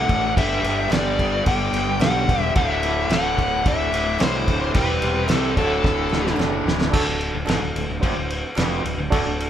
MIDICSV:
0, 0, Header, 1, 7, 480
1, 0, Start_track
1, 0, Tempo, 546946
1, 327, Time_signature, 4, 2, 24, 8
1, 8335, End_track
2, 0, Start_track
2, 0, Title_t, "Lead electric guitar"
2, 0, Program_c, 0, 29
2, 0, Note_on_c, 0, 78, 93
2, 294, Note_off_c, 0, 78, 0
2, 336, Note_on_c, 0, 76, 107
2, 805, Note_off_c, 0, 76, 0
2, 809, Note_on_c, 0, 74, 102
2, 1256, Note_off_c, 0, 74, 0
2, 1294, Note_on_c, 0, 79, 94
2, 1764, Note_off_c, 0, 79, 0
2, 1767, Note_on_c, 0, 78, 106
2, 2215, Note_off_c, 0, 78, 0
2, 2247, Note_on_c, 0, 76, 105
2, 2743, Note_off_c, 0, 76, 0
2, 2744, Note_on_c, 0, 78, 104
2, 3227, Note_on_c, 0, 76, 90
2, 3231, Note_off_c, 0, 78, 0
2, 3689, Note_on_c, 0, 72, 93
2, 3712, Note_off_c, 0, 76, 0
2, 4135, Note_off_c, 0, 72, 0
2, 4176, Note_on_c, 0, 71, 97
2, 4667, Note_off_c, 0, 71, 0
2, 4667, Note_on_c, 0, 69, 97
2, 4857, Note_off_c, 0, 69, 0
2, 4899, Note_on_c, 0, 69, 92
2, 5578, Note_off_c, 0, 69, 0
2, 8335, End_track
3, 0, Start_track
3, 0, Title_t, "Reed electric piano"
3, 0, Program_c, 1, 4
3, 0, Note_on_c, 1, 62, 70
3, 0, Note_on_c, 1, 66, 69
3, 0, Note_on_c, 1, 69, 81
3, 232, Note_off_c, 1, 62, 0
3, 235, Note_off_c, 1, 66, 0
3, 239, Note_off_c, 1, 69, 0
3, 323, Note_on_c, 1, 59, 75
3, 334, Note_on_c, 1, 67, 73
3, 341, Note_on_c, 1, 69, 80
3, 710, Note_off_c, 1, 59, 0
3, 715, Note_off_c, 1, 67, 0
3, 719, Note_off_c, 1, 69, 0
3, 797, Note_on_c, 1, 59, 77
3, 806, Note_on_c, 1, 67, 60
3, 812, Note_on_c, 1, 69, 77
3, 1187, Note_off_c, 1, 59, 0
3, 1192, Note_off_c, 1, 67, 0
3, 1195, Note_off_c, 1, 69, 0
3, 1277, Note_on_c, 1, 59, 70
3, 1288, Note_on_c, 1, 67, 70
3, 1291, Note_on_c, 1, 69, 73
3, 1667, Note_off_c, 1, 59, 0
3, 1673, Note_off_c, 1, 67, 0
3, 1674, Note_off_c, 1, 69, 0
3, 1757, Note_on_c, 1, 59, 69
3, 1767, Note_on_c, 1, 67, 64
3, 1780, Note_on_c, 1, 69, 90
3, 2147, Note_off_c, 1, 59, 0
3, 2152, Note_off_c, 1, 67, 0
3, 2159, Note_off_c, 1, 69, 0
3, 2233, Note_on_c, 1, 62, 80
3, 2238, Note_on_c, 1, 66, 73
3, 2250, Note_on_c, 1, 69, 91
3, 2625, Note_off_c, 1, 62, 0
3, 2628, Note_off_c, 1, 66, 0
3, 2634, Note_off_c, 1, 69, 0
3, 2722, Note_on_c, 1, 62, 68
3, 2728, Note_on_c, 1, 66, 63
3, 2733, Note_on_c, 1, 69, 85
3, 3110, Note_off_c, 1, 62, 0
3, 3113, Note_off_c, 1, 66, 0
3, 3115, Note_off_c, 1, 69, 0
3, 3195, Note_on_c, 1, 62, 64
3, 3200, Note_on_c, 1, 66, 59
3, 3213, Note_on_c, 1, 69, 69
3, 3586, Note_off_c, 1, 62, 0
3, 3589, Note_off_c, 1, 66, 0
3, 3595, Note_off_c, 1, 69, 0
3, 3680, Note_on_c, 1, 62, 72
3, 3691, Note_on_c, 1, 66, 70
3, 3696, Note_on_c, 1, 69, 81
3, 4069, Note_off_c, 1, 62, 0
3, 4074, Note_off_c, 1, 66, 0
3, 4076, Note_off_c, 1, 69, 0
3, 4159, Note_on_c, 1, 60, 75
3, 4167, Note_on_c, 1, 64, 66
3, 4174, Note_on_c, 1, 67, 89
3, 4548, Note_off_c, 1, 60, 0
3, 4552, Note_off_c, 1, 64, 0
3, 4555, Note_off_c, 1, 67, 0
3, 4640, Note_on_c, 1, 60, 71
3, 4647, Note_on_c, 1, 64, 60
3, 4653, Note_on_c, 1, 67, 72
3, 4881, Note_on_c, 1, 62, 83
3, 4884, Note_off_c, 1, 60, 0
3, 4888, Note_off_c, 1, 64, 0
3, 4888, Note_on_c, 1, 66, 74
3, 4891, Note_off_c, 1, 67, 0
3, 4894, Note_on_c, 1, 69, 94
3, 5460, Note_off_c, 1, 62, 0
3, 5463, Note_off_c, 1, 66, 0
3, 5466, Note_off_c, 1, 69, 0
3, 5593, Note_on_c, 1, 62, 84
3, 5598, Note_on_c, 1, 66, 78
3, 5605, Note_on_c, 1, 69, 99
3, 5983, Note_off_c, 1, 62, 0
3, 5986, Note_off_c, 1, 66, 0
3, 5990, Note_off_c, 1, 69, 0
3, 6063, Note_on_c, 1, 62, 104
3, 6073, Note_on_c, 1, 66, 93
3, 6082, Note_on_c, 1, 69, 125
3, 6459, Note_off_c, 1, 62, 0
3, 6463, Note_off_c, 1, 66, 0
3, 6468, Note_off_c, 1, 69, 0
3, 6539, Note_on_c, 1, 62, 83
3, 6551, Note_on_c, 1, 66, 70
3, 6554, Note_on_c, 1, 69, 96
3, 6936, Note_off_c, 1, 62, 0
3, 6942, Note_off_c, 1, 66, 0
3, 6944, Note_off_c, 1, 69, 0
3, 7021, Note_on_c, 1, 62, 85
3, 7029, Note_on_c, 1, 66, 79
3, 7033, Note_on_c, 1, 72, 90
3, 7417, Note_off_c, 1, 62, 0
3, 7421, Note_off_c, 1, 66, 0
3, 7423, Note_off_c, 1, 72, 0
3, 7512, Note_on_c, 1, 62, 89
3, 7516, Note_on_c, 1, 66, 78
3, 7527, Note_on_c, 1, 71, 97
3, 7903, Note_off_c, 1, 62, 0
3, 7904, Note_off_c, 1, 66, 0
3, 7910, Note_off_c, 1, 71, 0
3, 7989, Note_on_c, 1, 62, 123
3, 7995, Note_on_c, 1, 66, 112
3, 8004, Note_on_c, 1, 69, 123
3, 8335, Note_off_c, 1, 62, 0
3, 8335, Note_off_c, 1, 66, 0
3, 8335, Note_off_c, 1, 69, 0
3, 8335, End_track
4, 0, Start_track
4, 0, Title_t, "Overdriven electric guitar"
4, 0, Program_c, 2, 29
4, 0, Note_on_c, 2, 38, 100
4, 0, Note_on_c, 2, 45, 103
4, 0, Note_on_c, 2, 50, 98
4, 0, Note_on_c, 2, 57, 109
4, 0, Note_on_c, 2, 62, 110
4, 0, Note_on_c, 2, 66, 117
4, 272, Note_off_c, 2, 62, 0
4, 309, Note_off_c, 2, 38, 0
4, 315, Note_off_c, 2, 45, 0
4, 317, Note_off_c, 2, 50, 0
4, 322, Note_off_c, 2, 66, 0
4, 332, Note_off_c, 2, 57, 0
4, 336, Note_on_c, 2, 59, 103
4, 341, Note_on_c, 2, 62, 117
4, 344, Note_on_c, 2, 67, 111
4, 2240, Note_off_c, 2, 59, 0
4, 2242, Note_off_c, 2, 62, 0
4, 2243, Note_off_c, 2, 67, 0
4, 2264, Note_on_c, 2, 57, 95
4, 2270, Note_on_c, 2, 66, 105
4, 4162, Note_off_c, 2, 57, 0
4, 4165, Note_off_c, 2, 66, 0
4, 4178, Note_on_c, 2, 64, 102
4, 4180, Note_on_c, 2, 67, 100
4, 4187, Note_on_c, 2, 72, 105
4, 4878, Note_off_c, 2, 64, 0
4, 4879, Note_off_c, 2, 67, 0
4, 4883, Note_off_c, 2, 72, 0
4, 4904, Note_on_c, 2, 57, 104
4, 4906, Note_on_c, 2, 66, 105
4, 6080, Note_off_c, 2, 57, 0
4, 6081, Note_off_c, 2, 66, 0
4, 8335, End_track
5, 0, Start_track
5, 0, Title_t, "Overdriven electric guitar"
5, 0, Program_c, 3, 29
5, 72, Note_on_c, 3, 38, 79
5, 79, Note_on_c, 3, 45, 76
5, 82, Note_on_c, 3, 50, 83
5, 306, Note_off_c, 3, 38, 0
5, 309, Note_off_c, 3, 45, 0
5, 311, Note_off_c, 3, 50, 0
5, 313, Note_on_c, 3, 43, 100
5, 320, Note_on_c, 3, 50, 106
5, 324, Note_on_c, 3, 55, 106
5, 552, Note_off_c, 3, 43, 0
5, 556, Note_off_c, 3, 50, 0
5, 562, Note_off_c, 3, 55, 0
5, 563, Note_on_c, 3, 43, 74
5, 566, Note_on_c, 3, 50, 99
5, 573, Note_on_c, 3, 55, 88
5, 785, Note_off_c, 3, 43, 0
5, 794, Note_off_c, 3, 50, 0
5, 796, Note_on_c, 3, 43, 93
5, 800, Note_off_c, 3, 55, 0
5, 804, Note_on_c, 3, 50, 78
5, 810, Note_on_c, 3, 55, 91
5, 1031, Note_off_c, 3, 43, 0
5, 1037, Note_off_c, 3, 50, 0
5, 1042, Note_on_c, 3, 43, 92
5, 1047, Note_off_c, 3, 55, 0
5, 1048, Note_on_c, 3, 50, 96
5, 1058, Note_on_c, 3, 55, 106
5, 1273, Note_off_c, 3, 43, 0
5, 1280, Note_off_c, 3, 50, 0
5, 1284, Note_off_c, 3, 55, 0
5, 1284, Note_on_c, 3, 43, 81
5, 1291, Note_on_c, 3, 50, 88
5, 1295, Note_on_c, 3, 55, 91
5, 1515, Note_off_c, 3, 43, 0
5, 1520, Note_off_c, 3, 50, 0
5, 1524, Note_off_c, 3, 55, 0
5, 1525, Note_on_c, 3, 43, 82
5, 1531, Note_on_c, 3, 50, 80
5, 1534, Note_on_c, 3, 55, 85
5, 1757, Note_off_c, 3, 43, 0
5, 1765, Note_off_c, 3, 50, 0
5, 1766, Note_off_c, 3, 55, 0
5, 1768, Note_on_c, 3, 43, 101
5, 1775, Note_on_c, 3, 50, 102
5, 1777, Note_on_c, 3, 55, 120
5, 1999, Note_off_c, 3, 43, 0
5, 2004, Note_off_c, 3, 50, 0
5, 2009, Note_on_c, 3, 43, 69
5, 2010, Note_off_c, 3, 55, 0
5, 2015, Note_on_c, 3, 50, 85
5, 2020, Note_on_c, 3, 55, 97
5, 2235, Note_off_c, 3, 43, 0
5, 2238, Note_off_c, 3, 50, 0
5, 2241, Note_off_c, 3, 55, 0
5, 2251, Note_on_c, 3, 38, 102
5, 2254, Note_on_c, 3, 45, 91
5, 2264, Note_on_c, 3, 50, 105
5, 2479, Note_off_c, 3, 38, 0
5, 2486, Note_off_c, 3, 45, 0
5, 2490, Note_on_c, 3, 38, 91
5, 2492, Note_off_c, 3, 50, 0
5, 2496, Note_on_c, 3, 45, 84
5, 2503, Note_on_c, 3, 50, 94
5, 2719, Note_off_c, 3, 38, 0
5, 2725, Note_off_c, 3, 45, 0
5, 2729, Note_on_c, 3, 38, 72
5, 2731, Note_off_c, 3, 50, 0
5, 2735, Note_on_c, 3, 45, 97
5, 2742, Note_on_c, 3, 50, 94
5, 2953, Note_off_c, 3, 38, 0
5, 2962, Note_off_c, 3, 45, 0
5, 2963, Note_on_c, 3, 38, 85
5, 2969, Note_off_c, 3, 50, 0
5, 2973, Note_on_c, 3, 45, 85
5, 2979, Note_on_c, 3, 50, 108
5, 3195, Note_off_c, 3, 38, 0
5, 3201, Note_off_c, 3, 45, 0
5, 3205, Note_on_c, 3, 38, 89
5, 3210, Note_off_c, 3, 50, 0
5, 3211, Note_on_c, 3, 45, 87
5, 3220, Note_on_c, 3, 50, 103
5, 3438, Note_off_c, 3, 38, 0
5, 3445, Note_off_c, 3, 45, 0
5, 3448, Note_off_c, 3, 50, 0
5, 3448, Note_on_c, 3, 38, 83
5, 3456, Note_on_c, 3, 45, 85
5, 3459, Note_on_c, 3, 50, 90
5, 3685, Note_off_c, 3, 38, 0
5, 3691, Note_off_c, 3, 45, 0
5, 3696, Note_on_c, 3, 38, 97
5, 3699, Note_off_c, 3, 50, 0
5, 3702, Note_on_c, 3, 45, 113
5, 3709, Note_on_c, 3, 50, 98
5, 3926, Note_off_c, 3, 38, 0
5, 3931, Note_off_c, 3, 45, 0
5, 3933, Note_off_c, 3, 50, 0
5, 3936, Note_on_c, 3, 38, 65
5, 3941, Note_on_c, 3, 45, 77
5, 3944, Note_on_c, 3, 50, 79
5, 4158, Note_off_c, 3, 38, 0
5, 4161, Note_off_c, 3, 45, 0
5, 4162, Note_off_c, 3, 50, 0
5, 4173, Note_on_c, 3, 48, 89
5, 4178, Note_on_c, 3, 55, 97
5, 4185, Note_on_c, 3, 60, 96
5, 4400, Note_off_c, 3, 48, 0
5, 4409, Note_off_c, 3, 55, 0
5, 4409, Note_off_c, 3, 60, 0
5, 4411, Note_on_c, 3, 48, 81
5, 4419, Note_on_c, 3, 55, 92
5, 4420, Note_on_c, 3, 60, 83
5, 4639, Note_off_c, 3, 48, 0
5, 4648, Note_off_c, 3, 55, 0
5, 4650, Note_on_c, 3, 48, 82
5, 4652, Note_off_c, 3, 60, 0
5, 4659, Note_on_c, 3, 55, 85
5, 4663, Note_on_c, 3, 60, 95
5, 4874, Note_off_c, 3, 48, 0
5, 4879, Note_off_c, 3, 55, 0
5, 4881, Note_off_c, 3, 60, 0
5, 4889, Note_on_c, 3, 38, 93
5, 4898, Note_on_c, 3, 45, 86
5, 4899, Note_on_c, 3, 50, 110
5, 5119, Note_off_c, 3, 38, 0
5, 5127, Note_off_c, 3, 45, 0
5, 5130, Note_on_c, 3, 38, 80
5, 5131, Note_off_c, 3, 50, 0
5, 5137, Note_on_c, 3, 45, 90
5, 5142, Note_on_c, 3, 50, 92
5, 5359, Note_off_c, 3, 38, 0
5, 5365, Note_off_c, 3, 45, 0
5, 5369, Note_off_c, 3, 50, 0
5, 5370, Note_on_c, 3, 38, 83
5, 5375, Note_on_c, 3, 45, 81
5, 5379, Note_on_c, 3, 50, 83
5, 5599, Note_off_c, 3, 38, 0
5, 5606, Note_off_c, 3, 45, 0
5, 5609, Note_on_c, 3, 38, 101
5, 5611, Note_off_c, 3, 50, 0
5, 5616, Note_on_c, 3, 45, 97
5, 5622, Note_on_c, 3, 50, 104
5, 5838, Note_off_c, 3, 38, 0
5, 5843, Note_off_c, 3, 45, 0
5, 5848, Note_on_c, 3, 38, 81
5, 5850, Note_off_c, 3, 50, 0
5, 5854, Note_on_c, 3, 45, 80
5, 5860, Note_on_c, 3, 50, 73
5, 6073, Note_off_c, 3, 38, 0
5, 6076, Note_off_c, 3, 45, 0
5, 6079, Note_off_c, 3, 50, 0
5, 6085, Note_on_c, 3, 38, 93
5, 6192, Note_off_c, 3, 38, 0
5, 6202, Note_on_c, 3, 38, 75
5, 6396, Note_off_c, 3, 38, 0
5, 6442, Note_on_c, 3, 38, 87
5, 6557, Note_off_c, 3, 38, 0
5, 6561, Note_on_c, 3, 44, 105
5, 6676, Note_off_c, 3, 44, 0
5, 6686, Note_on_c, 3, 38, 73
5, 6797, Note_off_c, 3, 38, 0
5, 6808, Note_on_c, 3, 38, 71
5, 6916, Note_off_c, 3, 38, 0
5, 6926, Note_on_c, 3, 38, 68
5, 7037, Note_off_c, 3, 38, 0
5, 7040, Note_on_c, 3, 43, 99
5, 7156, Note_off_c, 3, 43, 0
5, 7162, Note_on_c, 3, 38, 73
5, 7356, Note_off_c, 3, 38, 0
5, 7521, Note_on_c, 3, 41, 104
5, 7755, Note_off_c, 3, 41, 0
5, 7759, Note_on_c, 3, 38, 67
5, 7869, Note_off_c, 3, 38, 0
5, 7879, Note_on_c, 3, 38, 66
5, 7989, Note_off_c, 3, 38, 0
5, 8000, Note_on_c, 3, 38, 93
5, 8115, Note_off_c, 3, 38, 0
5, 8124, Note_on_c, 3, 38, 83
5, 8317, Note_off_c, 3, 38, 0
5, 8335, End_track
6, 0, Start_track
6, 0, Title_t, "Fingered electric bass"
6, 0, Program_c, 4, 33
6, 81, Note_on_c, 4, 33, 96
6, 304, Note_off_c, 4, 33, 0
6, 324, Note_on_c, 4, 31, 92
6, 546, Note_off_c, 4, 31, 0
6, 552, Note_on_c, 4, 31, 100
6, 780, Note_off_c, 4, 31, 0
6, 795, Note_on_c, 4, 31, 91
6, 1247, Note_off_c, 4, 31, 0
6, 1286, Note_on_c, 4, 31, 95
6, 1508, Note_off_c, 4, 31, 0
6, 1521, Note_on_c, 4, 31, 92
6, 1745, Note_off_c, 4, 31, 0
6, 1756, Note_on_c, 4, 35, 92
6, 1982, Note_off_c, 4, 35, 0
6, 2007, Note_on_c, 4, 28, 90
6, 2228, Note_off_c, 4, 28, 0
6, 2245, Note_on_c, 4, 26, 89
6, 2692, Note_off_c, 4, 26, 0
6, 2721, Note_on_c, 4, 26, 98
6, 3170, Note_off_c, 4, 26, 0
6, 3208, Note_on_c, 4, 26, 100
6, 3429, Note_off_c, 4, 26, 0
6, 3448, Note_on_c, 4, 26, 91
6, 3668, Note_off_c, 4, 26, 0
6, 3683, Note_on_c, 4, 36, 103
6, 3906, Note_off_c, 4, 36, 0
6, 3930, Note_on_c, 4, 26, 85
6, 4150, Note_off_c, 4, 26, 0
6, 4168, Note_on_c, 4, 28, 89
6, 4389, Note_off_c, 4, 28, 0
6, 4408, Note_on_c, 4, 28, 95
6, 4628, Note_off_c, 4, 28, 0
6, 4646, Note_on_c, 4, 36, 92
6, 4867, Note_off_c, 4, 36, 0
6, 4886, Note_on_c, 4, 26, 94
6, 5107, Note_off_c, 4, 26, 0
6, 5125, Note_on_c, 4, 26, 104
6, 5346, Note_off_c, 4, 26, 0
6, 5365, Note_on_c, 4, 26, 80
6, 5586, Note_off_c, 4, 26, 0
6, 5600, Note_on_c, 4, 30, 82
6, 5823, Note_off_c, 4, 30, 0
6, 5843, Note_on_c, 4, 26, 84
6, 6065, Note_off_c, 4, 26, 0
6, 6086, Note_on_c, 4, 26, 94
6, 6198, Note_off_c, 4, 26, 0
6, 6202, Note_on_c, 4, 26, 84
6, 6427, Note_off_c, 4, 26, 0
6, 6447, Note_on_c, 4, 26, 83
6, 6555, Note_off_c, 4, 26, 0
6, 6560, Note_on_c, 4, 32, 99
6, 6674, Note_off_c, 4, 32, 0
6, 6691, Note_on_c, 4, 26, 78
6, 6800, Note_off_c, 4, 26, 0
6, 6808, Note_on_c, 4, 26, 82
6, 6918, Note_off_c, 4, 26, 0
6, 6929, Note_on_c, 4, 26, 78
6, 7039, Note_off_c, 4, 26, 0
6, 7048, Note_on_c, 4, 31, 94
6, 7158, Note_off_c, 4, 31, 0
6, 7167, Note_on_c, 4, 26, 76
6, 7389, Note_off_c, 4, 26, 0
6, 7527, Note_on_c, 4, 29, 100
6, 7749, Note_off_c, 4, 29, 0
6, 7760, Note_on_c, 4, 26, 89
6, 7874, Note_off_c, 4, 26, 0
6, 7879, Note_on_c, 4, 26, 79
6, 7993, Note_off_c, 4, 26, 0
6, 8003, Note_on_c, 4, 26, 86
6, 8116, Note_off_c, 4, 26, 0
6, 8127, Note_on_c, 4, 26, 83
6, 8335, Note_off_c, 4, 26, 0
6, 8335, End_track
7, 0, Start_track
7, 0, Title_t, "Drums"
7, 80, Note_on_c, 9, 49, 57
7, 83, Note_on_c, 9, 36, 86
7, 168, Note_off_c, 9, 49, 0
7, 170, Note_off_c, 9, 36, 0
7, 326, Note_on_c, 9, 36, 122
7, 330, Note_on_c, 9, 49, 94
7, 413, Note_off_c, 9, 36, 0
7, 418, Note_off_c, 9, 49, 0
7, 565, Note_on_c, 9, 49, 61
7, 653, Note_off_c, 9, 49, 0
7, 796, Note_on_c, 9, 39, 90
7, 805, Note_on_c, 9, 49, 82
7, 816, Note_on_c, 9, 38, 116
7, 884, Note_off_c, 9, 39, 0
7, 893, Note_off_c, 9, 49, 0
7, 904, Note_off_c, 9, 38, 0
7, 1045, Note_on_c, 9, 36, 79
7, 1046, Note_on_c, 9, 49, 59
7, 1133, Note_off_c, 9, 36, 0
7, 1134, Note_off_c, 9, 49, 0
7, 1283, Note_on_c, 9, 49, 83
7, 1286, Note_on_c, 9, 36, 107
7, 1370, Note_off_c, 9, 49, 0
7, 1374, Note_off_c, 9, 36, 0
7, 1524, Note_on_c, 9, 39, 73
7, 1524, Note_on_c, 9, 49, 61
7, 1612, Note_off_c, 9, 39, 0
7, 1612, Note_off_c, 9, 49, 0
7, 1760, Note_on_c, 9, 39, 97
7, 1764, Note_on_c, 9, 49, 78
7, 1775, Note_on_c, 9, 38, 111
7, 1848, Note_off_c, 9, 39, 0
7, 1852, Note_off_c, 9, 49, 0
7, 1862, Note_off_c, 9, 38, 0
7, 2009, Note_on_c, 9, 36, 91
7, 2009, Note_on_c, 9, 49, 61
7, 2096, Note_off_c, 9, 36, 0
7, 2097, Note_off_c, 9, 49, 0
7, 2243, Note_on_c, 9, 49, 78
7, 2247, Note_on_c, 9, 36, 127
7, 2330, Note_off_c, 9, 49, 0
7, 2335, Note_off_c, 9, 36, 0
7, 2483, Note_on_c, 9, 49, 56
7, 2571, Note_off_c, 9, 49, 0
7, 2725, Note_on_c, 9, 49, 85
7, 2726, Note_on_c, 9, 39, 86
7, 2735, Note_on_c, 9, 38, 108
7, 2812, Note_off_c, 9, 49, 0
7, 2814, Note_off_c, 9, 39, 0
7, 2823, Note_off_c, 9, 38, 0
7, 2969, Note_on_c, 9, 36, 71
7, 2970, Note_on_c, 9, 49, 53
7, 3057, Note_off_c, 9, 36, 0
7, 3058, Note_off_c, 9, 49, 0
7, 3209, Note_on_c, 9, 49, 78
7, 3210, Note_on_c, 9, 36, 114
7, 3297, Note_off_c, 9, 49, 0
7, 3298, Note_off_c, 9, 36, 0
7, 3452, Note_on_c, 9, 39, 73
7, 3455, Note_on_c, 9, 49, 69
7, 3539, Note_off_c, 9, 39, 0
7, 3543, Note_off_c, 9, 49, 0
7, 3683, Note_on_c, 9, 39, 87
7, 3687, Note_on_c, 9, 49, 83
7, 3698, Note_on_c, 9, 38, 113
7, 3771, Note_off_c, 9, 39, 0
7, 3775, Note_off_c, 9, 49, 0
7, 3785, Note_off_c, 9, 38, 0
7, 3929, Note_on_c, 9, 49, 67
7, 3930, Note_on_c, 9, 36, 94
7, 4017, Note_off_c, 9, 49, 0
7, 4018, Note_off_c, 9, 36, 0
7, 4164, Note_on_c, 9, 49, 90
7, 4169, Note_on_c, 9, 36, 126
7, 4252, Note_off_c, 9, 49, 0
7, 4257, Note_off_c, 9, 36, 0
7, 4404, Note_on_c, 9, 49, 66
7, 4492, Note_off_c, 9, 49, 0
7, 4639, Note_on_c, 9, 49, 81
7, 4643, Note_on_c, 9, 39, 91
7, 4650, Note_on_c, 9, 38, 120
7, 4727, Note_off_c, 9, 49, 0
7, 4730, Note_off_c, 9, 39, 0
7, 4737, Note_off_c, 9, 38, 0
7, 4888, Note_on_c, 9, 36, 76
7, 4888, Note_on_c, 9, 49, 61
7, 4976, Note_off_c, 9, 36, 0
7, 4976, Note_off_c, 9, 49, 0
7, 5128, Note_on_c, 9, 36, 114
7, 5135, Note_on_c, 9, 38, 57
7, 5216, Note_off_c, 9, 36, 0
7, 5223, Note_off_c, 9, 38, 0
7, 5357, Note_on_c, 9, 39, 69
7, 5377, Note_on_c, 9, 38, 82
7, 5445, Note_off_c, 9, 39, 0
7, 5464, Note_off_c, 9, 38, 0
7, 5500, Note_on_c, 9, 38, 64
7, 5588, Note_off_c, 9, 38, 0
7, 5592, Note_on_c, 9, 39, 90
7, 5619, Note_on_c, 9, 38, 82
7, 5680, Note_off_c, 9, 39, 0
7, 5707, Note_off_c, 9, 38, 0
7, 5864, Note_on_c, 9, 38, 102
7, 5952, Note_off_c, 9, 38, 0
7, 5978, Note_on_c, 9, 38, 95
7, 6066, Note_off_c, 9, 38, 0
7, 6086, Note_on_c, 9, 36, 121
7, 6087, Note_on_c, 9, 49, 86
7, 6087, Note_on_c, 9, 57, 127
7, 6174, Note_off_c, 9, 36, 0
7, 6174, Note_off_c, 9, 49, 0
7, 6174, Note_off_c, 9, 57, 0
7, 6325, Note_on_c, 9, 49, 59
7, 6412, Note_off_c, 9, 49, 0
7, 6553, Note_on_c, 9, 39, 83
7, 6569, Note_on_c, 9, 49, 77
7, 6579, Note_on_c, 9, 38, 117
7, 6641, Note_off_c, 9, 39, 0
7, 6657, Note_off_c, 9, 49, 0
7, 6667, Note_off_c, 9, 38, 0
7, 6810, Note_on_c, 9, 49, 56
7, 6898, Note_off_c, 9, 49, 0
7, 7046, Note_on_c, 9, 36, 109
7, 7047, Note_on_c, 9, 49, 79
7, 7134, Note_off_c, 9, 36, 0
7, 7135, Note_off_c, 9, 49, 0
7, 7288, Note_on_c, 9, 49, 59
7, 7376, Note_off_c, 9, 49, 0
7, 7514, Note_on_c, 9, 39, 94
7, 7525, Note_on_c, 9, 49, 80
7, 7535, Note_on_c, 9, 38, 98
7, 7602, Note_off_c, 9, 39, 0
7, 7612, Note_off_c, 9, 49, 0
7, 7623, Note_off_c, 9, 38, 0
7, 7771, Note_on_c, 9, 49, 58
7, 7859, Note_off_c, 9, 49, 0
7, 8005, Note_on_c, 9, 49, 94
7, 8006, Note_on_c, 9, 36, 126
7, 8093, Note_off_c, 9, 49, 0
7, 8094, Note_off_c, 9, 36, 0
7, 8253, Note_on_c, 9, 49, 62
7, 8335, Note_off_c, 9, 49, 0
7, 8335, End_track
0, 0, End_of_file